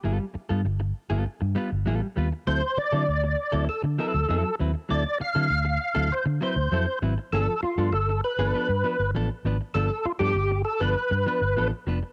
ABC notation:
X:1
M:4/4
L:1/16
Q:1/4=99
K:G
V:1 name="Tonewheel organ"
z16 | c2 d6 A2 A4 z2 | d2 =f6 c2 c4 z2 | A2 =F2 A2 B6 z4 |
A2 =F G3 A B6 z3 |]
V:2 name="Clean electric guitar"
[G,B,=FA] z2 [G,B,FA] z3 [G,B,FA] z2 [G,B,FB] z [G,B,FA] z [G,B,FB] z | [F,CEA] z2 [F,CEA] z3 [F,CEA] z2 [F,CEB] z [F,CEA] z [F,CEB] z | [F,CEA] z2 [F,CEA] z3 [F,CEA] z2 [F,CEB] z [F,CEA] z [F,CEB] z | [=F,B,DA] z2 [F,B,DA] z3 [F,B,DA] [F,B,DA] z [F,B,DB] z [F,B,DA] z [F,B,DB] z |
[=F,B,DA] z2 [F,B,DA] z3 [F,B,DA] z2 [F,B,DB] z [F,B,DA] z [F,B,DB] z |]
V:3 name="Fingered electric bass" clef=bass
G,,, z2 G,, G,,,2 z G,,, z G,, z G,,, A,,, z _E,, z | D,, z2 D, D,,2 z D,, z D, z D,, =F,, z _E,, z | D,, z2 D, D,,2 z D,, z D, z D,, =F,, z ^G,,, z | G,,, z2 G,, G,,,2 z G,,, z G,, z G,,, A,,, z ^G,,, z |
G,,, z2 G,, G,,,2 z G,,, z G,, z G,,, A,,, z =F,,, z |]